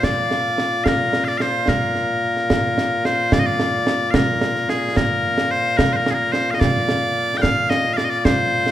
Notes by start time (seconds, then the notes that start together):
Already playing: A#2 A#3 F4
0.03 D5, concert bass drum, snare
0.31 snare
0.58 snare
0.84 A#4 F5, concert bass drum, snare
1.13 snare
1.25 D5 F5, snare
1.38 C5 F5, snare
1.68 A#4, concert bass drum, snare
1.95 snare
2.36 snare
2.50 concert bass drum, snare
2.78 snare
3.05 C5, snare
3.32 D5, concert bass drum, snare
3.40 D#5
3.46 D5
3.60 snare
3.87 snare
4.11 F5, concert bass drum, snare
4.15 A#4
4.41 snare
4.55 snare
4.69 G#4, snare
4.96 A#4, concert bass drum, snare
5.38 snare
5.51 C5
5.77 A#4, concert bass drum, snare
5.93 A#4 C5
6.06 snare
6.11 G#4 A#4
6.32 C5, snare
6.51 D#5 F5
6.60 D5, concert bass drum, snare
6.89 snare
7.37 G5
7.42 F5, concert bass drum, snare
7.70 D#5, snare
7.84 snare
7.93 D5 F5
7.98 snare
8.05 D#5
8.10 D5
8.19 D5
8.25 C5, concert bass drum, snare
8.67 snare